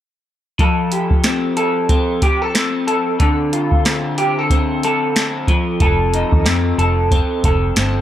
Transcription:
0.59 3.19 F3 medium
0.59 1.57 A4 medium
0.59 kick medium
0.59 closed hi-hat medium
0.92 2.22 G4 soft
0.92 closed hi-hat medium
1.11 kick medium
1.24 1.89 C4 medium
1.24 snare loud
1.24 closed hi-hat medium
1.57 2.23 A4 medium
1.57 closed hi-hat medium
1.89 2.54 C4 medium
1.89 kick medium
1.89 closed hi-hat medium
2.22 2.42 G4 medium
2.22 kick medium
2.22 closed hi-hat medium
2.42 2.86 A4 soft
2.55 3.85 C4 medium
2.55 snare medium
2.55 closed hi-hat medium
2.87 3.20 A4 medium
2.87 closed hi-hat medium
3.20 5.56 D3 medium
3.20 4.18 A4 medium
3.20 kick medium
3.20 closed hi-hat medium
3.53 6.14 F4 soft
3.53 closed hi-hat medium
3.72 kick medium
3.85 4.50 C4 medium
3.85 snare medium
3.85 closed hi-hat medium
4.18 4.39 G4 medium
4.18 closed hi-hat medium
4.39 4.83 A4 soft
4.50 5.16 C4 medium
4.50 kick medium
4.50 closed hi-hat medium
4.83 5.81 A4 medium
4.83 closed hi-hat medium
5.16 6.44 C4 soft
5.16 snare medium
5.16 closed hi-hat medium
5.48 5.81 F3 medium
5.48 kick medium
5.48 closed hi-hat medium
5.80 6.22 F1 medium
5.80 8.01 F3 medium
5.80 6.77 A4 medium
5.80 kick loud
5.80 closed hi-hat medium
6.14 8.01 D#4 soft
6.14 closed hi-hat medium
6.32 6.43 D#2 medium
6.32 kick medium
6.45 6.72 F2 medium
6.45 7.11 C4 medium
6.45 snare loud
6.45 closed hi-hat medium
6.78 7.20 F1 medium
6.78 7.44 A4 medium
6.78 closed hi-hat medium
7.11 7.77 C4 medium
7.11 kick medium
7.11 closed hi-hat medium
7.44 7.70 F1 medium
7.44 8.01 A4 medium
7.44 kick medium
7.44 closed hi-hat medium
7.76 8.01 G1 medium
7.76 8.01 C4 medium
7.76 snare medium
7.76 closed hi-hat medium

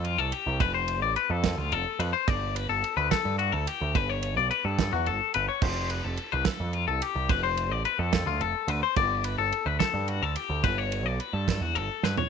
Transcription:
0.00 0.16 F2 medium
0.04 0.18 F4 medium
0.04 ride medium
0.18 0.31 C2 medium
0.18 0.33 A4 medium
0.32 0.60 G4 medium
0.32 ride medium
0.46 0.59 C2 medium
0.60 1.02 F1 loud
0.60 0.74 B4 medium
0.60 kick loud
0.60 ride loud
0.74 1.02 C5 medium
0.88 ride medium
1.02 1.15 A1 loud
1.02 1.16 D5 medium
1.16 1.31 B4 medium
1.16 ride medium
1.30 1.56 F2 loud
1.30 1.58 A4 medium
1.44 kick medium
1.44 snare loud
1.44 ride loud
1.58 1.73 D2 medium
1.58 1.73 F4 medium
1.71 1.84 F1 loud
1.71 2.00 A4 medium
1.71 ride medium
1.99 2.12 F2 loud
1.99 2.13 B4 medium
1.99 ride medium
2.13 2.28 C5 medium
2.28 2.66 G1 medium
2.28 2.55 D5 loud
2.28 kick loud
2.28 ride loud
2.55 2.69 B4 medium
2.55 ride medium
2.69 2.82 G1 medium
2.69 2.96 A4 medium
2.84 ride medium
2.97 3.10 D2 medium
2.97 3.11 B4 medium
3.11 3.38 A4 medium
3.11 kick medium
3.11 snare loud
3.11 ride loud
3.25 3.51 G2 medium
3.39 3.52 F#4 medium
3.39 ride medium
3.52 3.66 D2 loud
3.52 3.67 A4 medium
3.67 3.95 G4 medium
3.67 ride medium
3.81 3.94 D2 medium
3.95 4.37 G1 loud
3.95 4.09 B4 loud
3.95 kick loud
3.95 ride loud
4.09 4.37 C#5 medium
4.23 ride medium
4.37 4.50 B1 medium
4.37 4.50 D5 medium
4.51 4.65 B4 medium
4.51 ride medium
4.65 4.90 G2 loud
4.65 4.92 A4 medium
4.79 kick medium
4.79 snare loud
4.79 ride loud
4.93 5.08 E2 medium
4.93 5.06 F#4 medium
5.06 5.19 G1 medium
5.06 5.34 A4 medium
5.06 ride medium
5.34 5.47 G1 loud
5.34 5.48 B4 medium
5.34 ride medium
5.49 5.63 C#5 medium
5.62 6.00 F1 loud
5.62 5.90 C5 loud
5.62 kick loud
5.62 crash loud
5.90 6.04 B4 medium
5.90 ride medium
6.04 6.17 F1 medium
6.04 6.32 A4 medium
6.17 ride medium
6.32 6.45 C2 medium
6.32 6.46 B4 medium
6.45 6.74 A4 loud
6.45 kick medium
6.45 snare loud
6.45 ride loud
6.60 6.85 F2 medium
6.73 6.87 F4 medium
6.73 ride medium
6.88 7.00 C2 loud
6.88 7.02 A4 medium
7.02 7.29 G4 medium
7.02 ride medium
7.15 7.28 C2 loud
7.29 7.71 F1 loud
7.29 7.43 B4 medium
7.29 kick loud
7.29 ride loud
7.43 7.71 C5 medium
7.57 ride medium
7.71 7.84 A1 loud
7.71 7.85 D5 medium
7.85 7.99 B4 medium
7.85 ride medium
7.99 8.25 F2 loud
7.99 8.27 A4 medium
8.13 kick medium
8.13 snare loud
8.13 ride loud
8.26 8.41 D2 medium
8.26 8.41 F4 medium
8.40 8.53 F1 medium
8.40 8.69 A4 medium
8.40 ride medium
8.68 8.81 D2 loud
8.68 8.83 B4 medium
8.68 ride medium
8.83 8.96 C5 medium
8.96 9.35 G1 loud
8.96 9.25 D5 loud
8.96 kick loud
8.96 ride loud
9.24 9.38 B4 medium
9.24 ride medium
9.38 9.51 G1 medium
9.38 9.66 A4 medium
9.52 ride medium
9.66 9.79 D2 medium
9.66 9.79 B4 medium
9.80 10.08 A4 medium
9.80 kick medium
9.80 snare loud
9.80 ride loud
9.94 10.20 G2 medium
10.08 10.23 F#4 medium
10.08 ride medium
10.22 10.35 D2 loud
10.22 10.36 A4 medium
10.36 10.64 G4 medium
10.36 ride medium
10.49 10.63 D2 medium
10.64 11.05 G1 loud
10.64 10.78 B4 loud
10.64 kick loud
10.64 ride loud
10.78 11.06 C#5 medium
10.92 ride medium
11.05 11.18 B1 medium
11.05 11.20 D5 medium
11.20 11.33 B4 medium
11.20 ride medium
11.33 11.60 G2 medium
11.33 11.62 A4 medium
11.48 kick medium
11.48 snare loud
11.48 ride loud
11.61 11.76 E2 medium
11.61 11.75 F#4 medium
11.75 11.88 G1 loud
11.75 12.04 A4 medium
11.75 ride medium
12.03 12.17 G2 medium
12.03 12.18 B4 medium
12.03 snare medium
12.17 12.29 C#5 medium
12.17 floor tom loud

